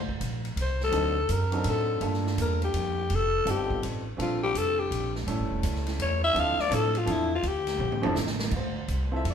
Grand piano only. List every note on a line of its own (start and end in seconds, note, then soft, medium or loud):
0.91 1.14 F#3 medium
0.91 1.14 C4 medium
0.91 1.14 D4 medium
0.91 1.14 D#4 medium
0.91 1.15 A4 medium
1.52 1.99 F#3 medium
1.52 1.99 C4 medium
1.52 1.99 D4 medium
1.52 2.00 D#4 medium
1.52 2.00 A4 medium
2.01 3.03 G3 medium
2.01 3.03 A#3 medium
2.01 3.03 D4 medium
2.01 3.03 F4 medium
2.01 3.04 A4 medium
3.45 4.01 G3 medium
3.45 4.01 C4 medium
3.45 4.02 D#4 medium
3.45 4.02 F4 medium
3.45 4.02 A4 medium
4.17 5.19 G3 medium
4.17 5.19 C4 medium
4.17 5.20 D4 medium
4.17 5.20 F4 medium
4.17 5.20 A4 medium
5.27 6.28 G3 medium
5.27 6.28 A3 medium
5.27 6.28 C#4 medium
5.27 6.29 E4 medium
5.27 6.29 A4 medium
6.33 6.56 F3 medium
6.33 6.56 C4 medium
6.33 6.56 D4 medium
6.33 6.57 E4 medium
6.33 6.57 A4 medium
6.69 6.92 F3 medium
6.69 6.93 C4 medium
6.69 6.92 D4 medium
6.69 6.93 E4 medium
6.69 6.93 A4 medium
7.05 7.28 F3 medium
7.05 7.28 C4 medium
7.05 7.29 D4 medium
7.05 7.29 E4 medium
7.05 7.29 A4 medium
8.02 8.14 F3 medium
8.02 8.14 C4 medium
8.02 8.15 D4 medium
8.02 8.15 E4 medium
8.02 8.15 A4 loud
8.56 9.10 C5 medium
9.12 9.23 C4 medium
9.12 9.23 E4 medium
9.12 9.23 F4 medium
9.12 9.24 A4 medium
9.16 9.26 E5 loud
9.30 9.34 D5 medium